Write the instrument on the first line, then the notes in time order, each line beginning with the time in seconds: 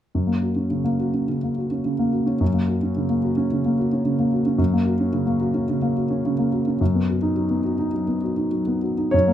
grand piano
0.15 F#2
0.27 A#3
0.42 F#4
0.56 C#4
0.70 C#3
0.84 A#3
0.99 F#4
1.14 C#4
1.28 C#3
1.43 A#3
1.58 F#4
1.71 C#4
1.85 C#3
1.99 A#3
2.12 F#4
2.26 C#4
2.41 F#2
2.54 A#3
2.68 F#4
2.83 C#4
2.97 C#3
3.09 A#3
3.24 F#4
3.37 C#4
3.52 C#3
3.66 A#3
3.79 F#4
3.93 C#4
4.05 C#3
4.19 A#3
4.33 F#4
4.46 C#4
4.58 F#2
4.73 A#3
4.86 F#4
5.00 C#4
5.13 C#3
5.26 A#3
5.41 F#4
5.54 C#4
5.69 C#3
5.82 A#3
5.97 F#4
6.10 C#4
6.25 C#3
6.39 A#3
6.52 F#4
6.67 C#4
6.81 F#2
6.95 B3
7.09 F#4
7.22 D#4
7.36 F#3
7.50 B3
7.64 F#4
7.79 D#4
7.93 F#3
8.08 B3
8.23 F#4
8.37 D#4
8.52 F#3
8.67 B3
8.83 F#4
8.97 D#4
9.11 F#2 C#5
9.28 A#3